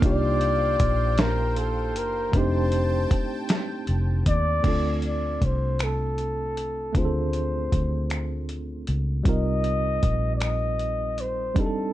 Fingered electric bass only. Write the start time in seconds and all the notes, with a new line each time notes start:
0.03 C2
0.81 A#1
1.97 F#1
2.34 F1
3.12 muted fingered electric bass stroke
3.89 F1
4.27 D#2
4.65 D2
5.42 C2
6.95 D2
7.73 D2
8.89 C#2
9.26 C2
10.04 A#1
11.57 F1